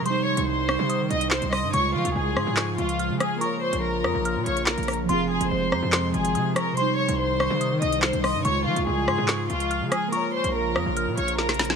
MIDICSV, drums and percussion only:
0, 0, Header, 1, 2, 480
1, 0, Start_track
1, 0, Key_signature, -4, "minor"
1, 0, Tempo, 419580
1, 64, Time_signature, 4, 2, 24, 8
1, 13451, End_track
2, 0, Start_track
2, 0, Title_t, "Drums"
2, 64, Note_on_c, 9, 42, 80
2, 178, Note_off_c, 9, 42, 0
2, 425, Note_on_c, 9, 42, 86
2, 540, Note_off_c, 9, 42, 0
2, 786, Note_on_c, 9, 37, 95
2, 900, Note_off_c, 9, 37, 0
2, 1025, Note_on_c, 9, 42, 85
2, 1139, Note_off_c, 9, 42, 0
2, 1265, Note_on_c, 9, 42, 71
2, 1379, Note_off_c, 9, 42, 0
2, 1385, Note_on_c, 9, 42, 81
2, 1496, Note_on_c, 9, 39, 102
2, 1500, Note_off_c, 9, 42, 0
2, 1503, Note_on_c, 9, 38, 126
2, 1610, Note_off_c, 9, 39, 0
2, 1618, Note_off_c, 9, 38, 0
2, 1624, Note_on_c, 9, 42, 78
2, 1738, Note_off_c, 9, 42, 0
2, 1745, Note_on_c, 9, 37, 97
2, 1745, Note_on_c, 9, 46, 54
2, 1859, Note_off_c, 9, 37, 0
2, 1859, Note_off_c, 9, 46, 0
2, 1984, Note_on_c, 9, 42, 83
2, 2099, Note_off_c, 9, 42, 0
2, 2346, Note_on_c, 9, 42, 86
2, 2460, Note_off_c, 9, 42, 0
2, 2706, Note_on_c, 9, 37, 94
2, 2820, Note_off_c, 9, 37, 0
2, 2936, Note_on_c, 9, 39, 102
2, 2944, Note_on_c, 9, 38, 124
2, 2945, Note_on_c, 9, 42, 84
2, 3051, Note_off_c, 9, 39, 0
2, 3058, Note_off_c, 9, 38, 0
2, 3059, Note_off_c, 9, 42, 0
2, 3185, Note_on_c, 9, 42, 65
2, 3299, Note_off_c, 9, 42, 0
2, 3305, Note_on_c, 9, 42, 79
2, 3420, Note_off_c, 9, 42, 0
2, 3425, Note_on_c, 9, 42, 74
2, 3540, Note_off_c, 9, 42, 0
2, 3665, Note_on_c, 9, 37, 98
2, 3665, Note_on_c, 9, 42, 78
2, 3779, Note_off_c, 9, 37, 0
2, 3779, Note_off_c, 9, 42, 0
2, 3904, Note_on_c, 9, 42, 80
2, 4019, Note_off_c, 9, 42, 0
2, 4266, Note_on_c, 9, 42, 87
2, 4380, Note_off_c, 9, 42, 0
2, 4625, Note_on_c, 9, 37, 91
2, 4740, Note_off_c, 9, 37, 0
2, 4865, Note_on_c, 9, 42, 88
2, 4979, Note_off_c, 9, 42, 0
2, 5104, Note_on_c, 9, 42, 71
2, 5218, Note_off_c, 9, 42, 0
2, 5225, Note_on_c, 9, 42, 81
2, 5336, Note_on_c, 9, 39, 105
2, 5339, Note_off_c, 9, 42, 0
2, 5343, Note_on_c, 9, 38, 127
2, 5450, Note_off_c, 9, 39, 0
2, 5457, Note_off_c, 9, 38, 0
2, 5464, Note_on_c, 9, 42, 46
2, 5524, Note_off_c, 9, 42, 0
2, 5524, Note_on_c, 9, 42, 58
2, 5584, Note_off_c, 9, 42, 0
2, 5584, Note_on_c, 9, 42, 66
2, 5585, Note_on_c, 9, 37, 92
2, 5585, Note_on_c, 9, 46, 55
2, 5644, Note_off_c, 9, 42, 0
2, 5644, Note_on_c, 9, 42, 75
2, 5699, Note_off_c, 9, 37, 0
2, 5699, Note_off_c, 9, 46, 0
2, 5759, Note_off_c, 9, 42, 0
2, 5825, Note_on_c, 9, 42, 81
2, 5939, Note_off_c, 9, 42, 0
2, 6186, Note_on_c, 9, 42, 85
2, 6300, Note_off_c, 9, 42, 0
2, 6546, Note_on_c, 9, 37, 94
2, 6660, Note_off_c, 9, 37, 0
2, 6776, Note_on_c, 9, 39, 99
2, 6784, Note_on_c, 9, 38, 124
2, 6785, Note_on_c, 9, 42, 86
2, 6891, Note_off_c, 9, 39, 0
2, 6898, Note_off_c, 9, 38, 0
2, 6899, Note_off_c, 9, 42, 0
2, 7025, Note_on_c, 9, 42, 65
2, 7139, Note_off_c, 9, 42, 0
2, 7146, Note_on_c, 9, 42, 82
2, 7260, Note_off_c, 9, 42, 0
2, 7266, Note_on_c, 9, 42, 76
2, 7380, Note_off_c, 9, 42, 0
2, 7505, Note_on_c, 9, 37, 98
2, 7505, Note_on_c, 9, 42, 78
2, 7620, Note_off_c, 9, 37, 0
2, 7620, Note_off_c, 9, 42, 0
2, 7745, Note_on_c, 9, 42, 79
2, 7859, Note_off_c, 9, 42, 0
2, 8106, Note_on_c, 9, 42, 85
2, 8220, Note_off_c, 9, 42, 0
2, 8466, Note_on_c, 9, 37, 94
2, 8581, Note_off_c, 9, 37, 0
2, 8705, Note_on_c, 9, 42, 87
2, 8819, Note_off_c, 9, 42, 0
2, 8945, Note_on_c, 9, 42, 69
2, 9059, Note_off_c, 9, 42, 0
2, 9066, Note_on_c, 9, 42, 82
2, 9176, Note_on_c, 9, 39, 104
2, 9180, Note_off_c, 9, 42, 0
2, 9184, Note_on_c, 9, 38, 127
2, 9291, Note_off_c, 9, 39, 0
2, 9298, Note_off_c, 9, 38, 0
2, 9304, Note_on_c, 9, 42, 75
2, 9418, Note_off_c, 9, 42, 0
2, 9425, Note_on_c, 9, 37, 96
2, 9425, Note_on_c, 9, 46, 56
2, 9540, Note_off_c, 9, 37, 0
2, 9540, Note_off_c, 9, 46, 0
2, 9665, Note_on_c, 9, 42, 83
2, 9779, Note_off_c, 9, 42, 0
2, 10026, Note_on_c, 9, 42, 85
2, 10140, Note_off_c, 9, 42, 0
2, 10386, Note_on_c, 9, 37, 94
2, 10500, Note_off_c, 9, 37, 0
2, 10617, Note_on_c, 9, 39, 98
2, 10624, Note_on_c, 9, 38, 126
2, 10625, Note_on_c, 9, 42, 84
2, 10731, Note_off_c, 9, 39, 0
2, 10738, Note_off_c, 9, 38, 0
2, 10740, Note_off_c, 9, 42, 0
2, 10865, Note_on_c, 9, 42, 66
2, 10979, Note_off_c, 9, 42, 0
2, 10986, Note_on_c, 9, 42, 81
2, 11100, Note_off_c, 9, 42, 0
2, 11105, Note_on_c, 9, 42, 76
2, 11220, Note_off_c, 9, 42, 0
2, 11345, Note_on_c, 9, 37, 98
2, 11345, Note_on_c, 9, 42, 80
2, 11459, Note_off_c, 9, 37, 0
2, 11459, Note_off_c, 9, 42, 0
2, 11584, Note_on_c, 9, 42, 81
2, 11699, Note_off_c, 9, 42, 0
2, 11945, Note_on_c, 9, 42, 86
2, 12060, Note_off_c, 9, 42, 0
2, 12306, Note_on_c, 9, 37, 94
2, 12420, Note_off_c, 9, 37, 0
2, 12545, Note_on_c, 9, 42, 86
2, 12659, Note_off_c, 9, 42, 0
2, 12784, Note_on_c, 9, 42, 71
2, 12899, Note_off_c, 9, 42, 0
2, 12905, Note_on_c, 9, 42, 81
2, 13020, Note_off_c, 9, 42, 0
2, 13024, Note_on_c, 9, 38, 64
2, 13139, Note_off_c, 9, 38, 0
2, 13144, Note_on_c, 9, 38, 71
2, 13144, Note_on_c, 9, 42, 47
2, 13205, Note_off_c, 9, 42, 0
2, 13205, Note_on_c, 9, 42, 56
2, 13259, Note_off_c, 9, 38, 0
2, 13264, Note_off_c, 9, 42, 0
2, 13264, Note_on_c, 9, 38, 102
2, 13264, Note_on_c, 9, 42, 68
2, 13265, Note_on_c, 9, 46, 58
2, 13324, Note_off_c, 9, 42, 0
2, 13324, Note_on_c, 9, 42, 78
2, 13379, Note_off_c, 9, 38, 0
2, 13379, Note_off_c, 9, 46, 0
2, 13384, Note_on_c, 9, 38, 97
2, 13439, Note_off_c, 9, 42, 0
2, 13451, Note_off_c, 9, 38, 0
2, 13451, End_track
0, 0, End_of_file